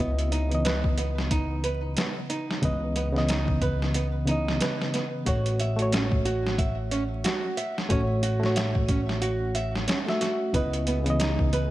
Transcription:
Already playing: C#3
0.00 C#2 B3 E4 D#5
0.19 closed hi-hat
0.32 D#4, closed hi-hat
0.49 C#3 B3, closed hi-hat
0.53 E3 D#5
0.65 B4, snare, closed hi-hat
0.84 kick
0.98 B3, closed hi-hat
1.18 snare
1.31 D#4, kick, closed hi-hat
1.64 B4, closed hi-hat
1.97 B3, snare, closed hi-hat
2.30 D#4, closed hi-hat
2.51 snare
2.62 C#2 C#3 E3 B3 B4 D#5, kick, closed hi-hat
2.96 B3, closed hi-hat
3.12 C#3 E3 B3
3.16 D#5, snare
3.29 D#4, snare, closed hi-hat
3.48 kick
3.62 B4, kick, closed hi-hat
3.82 snare
3.94 B3, closed hi-hat
4.25 C#3 E3 B3 D#4, closed hi-hat
4.31 D#5
4.48 snare
4.61 B4, snare, closed hi-hat
4.81 snare
4.94 B3, snare, closed hi-hat
5.26 A1 A3 F#4 C#5, kick, closed hi-hat
5.46 closed hi-hat
5.60 E5, closed hi-hat
5.76 A3 F#4, closed hi-hat
5.82 C#5
5.92 C#4, snare, closed hi-hat
6.12 kick
6.25 F#4, closed hi-hat
6.47 snare
6.58 E5, kick, closed hi-hat
6.91 C#4, closed hi-hat
7.24 F#4, snare, closed hi-hat
7.57 E5, closed hi-hat
7.78 snare
7.89 A1 A3 C#4 F#4 C#5, kick, closed hi-hat
8.23 F#4, closed hi-hat
8.40 A3 F#4, snare
8.46 C#5
8.56 E5, snare, closed hi-hat
8.75 kick
8.88 C#4, kick, closed hi-hat
9.09 snare
9.21 F#4, closed hi-hat
9.55 E5, closed hi-hat
9.76 snare
9.88 C#4, snare, closed hi-hat
10.06 A3 F#4 E5, snare
10.21 F#4, snare, closed hi-hat
10.53 C#2 C#3 G#3 B3 E4 G#4 B4 D#5, kick, closed hi-hat
10.73 closed hi-hat
10.87 B3, closed hi-hat
11.04 C#3 B3, closed hi-hat
11.08 E3 D#5
11.20 D#4, snare, closed hi-hat
11.39 kick
11.53 B4, closed hi-hat

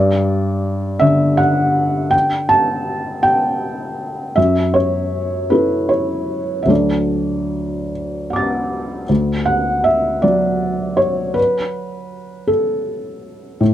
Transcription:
Already playing: G2 D5
0.99 D3 E5
1.37 F#5
2.11 G5
2.49 A5
3.23 G5
4.36 F#2 E5
4.74 C#5
5.50 E4 A4 B4
5.89 C#5
6.63 D2 E5
6.67 F#3 D4 A4 D5
8.30 F#5 D6
8.36 A6
9.09 D2
9.46 F#5
9.84 E5
10.22 F#3 D5
10.97 C#5
11.34 B4
12.47 A4
13.61 A2

